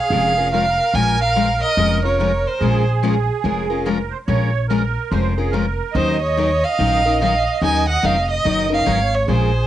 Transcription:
0.00 0.48 G#4 medium
0.00 0.53 F5 medium
0.10 0.77 F1 medium
0.10 0.33 F3 medium
0.10 0.33 G#3 medium
0.10 0.33 C#4 medium
0.10 0.33 F4 medium
0.10 0.33 A#4 medium
0.38 0.52 C#4 soft
0.38 0.53 F4 soft
0.38 0.52 A#4 soft
0.52 0.64 F3 medium
0.52 0.64 G#3 medium
0.52 0.64 C#4 medium
0.52 0.64 F4 medium
0.52 2.67 A#4 medium
0.52 0.65 A#4 medium
0.52 0.97 F5 medium
0.94 1.60 A#1 medium
0.94 1.16 F3 medium
0.94 1.16 G#3 medium
0.94 1.16 C#4 medium
0.94 1.16 F4 medium
0.94 1.17 A#4 medium
0.94 1.21 G#5 loud
1.22 1.60 F5 loud
1.36 1.47 F3 medium
1.36 1.47 G#3 medium
1.36 1.47 C#4 medium
1.36 1.47 F4 medium
1.36 1.48 A#4 loud
1.63 2.01 D#5 loud
1.77 2.44 F1 medium
1.77 1.99 F3 medium
1.77 1.99 G#3 medium
1.77 1.99 C#4 medium
1.77 1.99 F4 medium
1.77 2.00 A#4 medium
2.04 2.19 C#4 soft
2.04 2.19 F4 soft
2.04 2.19 A#4 soft
2.04 2.49 C#5 medium
2.20 2.31 F3 medium
2.20 2.31 G#3 medium
2.20 2.31 C#4 medium
2.20 2.31 F4 medium
2.20 2.31 A#4 medium
2.47 2.88 C5 medium
2.60 3.28 A#1 medium
2.60 2.83 F3 medium
2.60 2.83 G#3 medium
2.60 2.83 C#4 medium
2.60 2.83 F4 medium
2.60 3.89 G#4 medium
2.60 2.83 A#4 medium
3.03 3.14 F3 medium
3.03 3.14 G#3 medium
3.03 3.14 C#4 medium
3.03 3.14 F4 medium
3.03 3.15 A#4 medium
3.44 4.11 F1 medium
3.44 3.65 F3 medium
3.44 3.66 G#3 medium
3.44 3.66 C#4 medium
3.44 3.66 F4 medium
3.44 3.66 A#4 medium
3.70 3.85 C#4 soft
3.70 3.85 F4 soft
3.70 3.85 A#4 medium
3.85 3.97 F3 medium
3.85 3.97 G#3 medium
3.85 3.97 C#4 medium
3.85 3.98 F4 medium
3.85 4.13 A#4 medium
3.85 3.98 A#4 medium
4.11 4.18 C5 medium
4.27 4.95 A#1 medium
4.27 4.49 F3 medium
4.27 4.50 G#3 medium
4.27 4.50 C#4 medium
4.27 4.50 F4 medium
4.27 4.50 A#4 medium
4.27 4.66 C#5 loud
4.68 4.81 F3 medium
4.68 4.81 G#3 medium
4.68 4.81 C#4 medium
4.68 4.81 F4 medium
4.68 5.12 A#4 loud
4.68 4.82 A#4 loud
5.11 5.78 F1 medium
5.11 5.33 F3 medium
5.11 5.33 G#3 medium
5.11 5.33 C#4 medium
5.11 5.33 F4 medium
5.11 5.33 A#4 medium
5.11 5.38 C5 medium
5.37 5.52 C#4 soft
5.37 5.53 F4 soft
5.37 5.53 G#4 medium
5.37 5.52 A#4 medium
5.51 5.64 F3 medium
5.51 5.65 G#3 medium
5.51 5.65 C#4 medium
5.51 5.65 F4 medium
5.51 5.95 A#4 medium
5.51 5.65 A#4 medium
5.92 6.62 D#2 medium
5.92 6.16 D#3 medium
5.92 6.16 F#3 medium
5.92 6.17 C#4 medium
5.92 6.17 D#4 medium
5.92 6.17 A#4 medium
5.92 6.20 C5 medium
5.92 8.95 D#5 loud
6.22 6.66 C#5 medium
6.37 6.48 D#3 medium
6.37 6.48 F#3 medium
6.37 6.49 C#4 medium
6.37 6.49 D#4 medium
6.37 6.49 A#4 medium
6.65 7.21 F5 loud
6.79 7.45 A#1 medium
6.79 7.00 D#3 medium
6.79 7.00 F#3 medium
6.79 7.00 C#4 medium
6.79 7.00 D#4 medium
6.79 7.00 A#4 medium
7.06 7.20 C#4 soft
7.06 7.20 D#4 soft
7.06 7.20 A#4 medium
7.21 7.32 D#3 medium
7.21 7.32 F#3 medium
7.21 7.32 C#4 medium
7.21 7.32 D#4 medium
7.21 7.33 A#4 medium
7.21 7.60 F5 medium
7.62 7.95 D#2 medium
7.62 7.83 D#3 medium
7.62 7.83 F#3 medium
7.62 7.83 C#4 medium
7.62 7.84 D#4 medium
7.62 7.84 A#4 medium
7.62 7.87 G#5 medium
7.89 8.06 F#5 medium
8.03 8.39 F1 medium
8.03 8.14 D#3 medium
8.03 8.15 F#3 medium
8.03 8.15 C#4 medium
8.03 8.15 D#4 medium
8.03 8.15 A#4 medium
8.03 8.30 F5 medium
8.31 8.69 D#5 medium
8.45 8.81 F#1 medium
8.45 8.66 D#3 medium
8.45 8.66 F#3 medium
8.45 8.67 C#4 medium
8.45 8.67 D#4 medium
8.45 8.67 A#4 medium
8.70 8.85 C#4 soft
8.70 8.85 D#4 soft
8.70 8.86 A#4 soft
8.74 9.17 F5 medium
8.86 9.23 G#1 medium
8.86 8.98 D#3 medium
8.86 8.98 F#3 medium
8.86 8.98 C#4 medium
8.86 8.98 D#4 medium
8.86 8.98 A#4 medium
8.86 9.29 C#5 medium
9.15 9.30 C#5 medium
9.27 9.67 A#1 medium
9.27 9.50 F3 medium
9.27 9.50 G#3 medium
9.27 9.50 C#4 medium
9.27 9.50 F4 medium
9.27 9.67 G#4 medium
9.27 9.51 A#4 medium
9.27 9.67 C5 medium

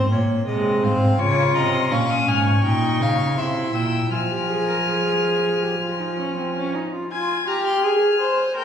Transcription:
0.00 0.13 G#2 medium
0.00 0.13 C5 medium
0.10 0.47 A#2 medium
0.10 0.46 A#3 medium
0.10 0.47 C#5 medium
0.47 0.85 C3 medium
0.47 0.85 G#3 medium
0.47 0.85 D#5 medium
0.83 1.19 G#2 medium
0.83 1.19 C4 loud
0.83 1.21 F5 medium
1.19 1.55 C#3 medium
1.19 1.93 F4 loud
1.19 1.55 C#5 loud
1.19 1.57 C#6 loud
1.55 1.93 C3 medium
1.55 1.93 D#5 loud
1.55 1.74 A#5 medium
1.73 1.89 C6 medium
1.90 2.28 A#2 medium
1.90 2.64 C#4 medium
1.90 2.29 F5 loud
1.90 2.11 C#6 medium
2.10 2.29 D#6 medium
2.28 2.63 G#2 medium
2.28 2.63 G#5 loud
2.28 2.45 F6 medium
2.45 3.39 C#6 loud
2.63 3.02 A#2 medium
2.63 3.36 D#4 loud
2.63 3.03 G5 loud
3.00 3.38 C#3 medium
3.00 3.40 F5 loud
3.37 3.73 C3 medium
3.37 4.10 E4 medium
3.37 3.76 E5 medium
3.37 3.72 C6 medium
3.73 4.11 A#2 medium
3.73 4.12 G5 medium
3.73 4.10 E6 medium
4.12 6.70 F3 medium
4.12 4.20 F4 medium
4.12 6.71 G#5 loud
4.12 6.71 F6 medium
4.31 4.49 G4 medium
4.50 4.67 G#4 medium
4.67 4.86 A#4 medium
4.88 5.64 G#4 medium
5.62 5.80 G4 medium
5.81 6.01 F4 medium
6.00 6.18 D#4 medium
6.19 6.37 C#4 medium
6.38 6.56 C4 medium
6.57 6.77 C#4 medium
6.75 6.92 D#4 medium
6.93 7.11 F4 medium
7.11 7.45 F4 loud
7.11 7.45 G#5 loud
7.11 7.49 G#6 medium
7.47 7.85 G4 loud
7.47 7.65 A#5 medium
7.47 8.56 F6 medium
7.66 7.83 C6 loud
7.84 8.19 G#4 loud
7.84 8.56 G#5 loud
8.20 8.56 C5 medium
8.56 8.64 A#4 loud
8.56 8.64 G5 loud
8.56 8.64 G6 medium

